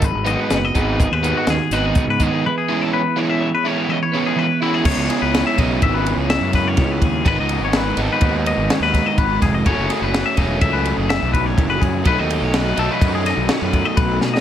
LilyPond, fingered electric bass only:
\new Staff \with { instrumentName = "Fingered electric bass" } { \clef bass \time 5/4 \key cis \minor \tempo 4 = 125 gis,,16 gis,,8 r16 fis,,8 gis,,8. dis,8 r16 dis,16 r16 gis,,8 r16 gis,8 r16 | r1 r4 | cis,16 cis,16 r16 cis,8 r16 b,,8 gis,,8. cis,8 fis,8. cis,8 dis,8 | gis,,16 cis,8 gis,,8. gis,,16 r16 dis,8. gis,,16 r16 dis,8 r16 gis,,8 eis,,8 |
fis,,16 fis,,16 r16 fis,,8 r16 e,,8 cis,8. fis,,8 b,,8. fis,,8 fis,8 | b,,16 dis,8 b,,8. b,,16 r16 fis,8. b,,16 r16 fis,8 r16 b,,8 b,8 | }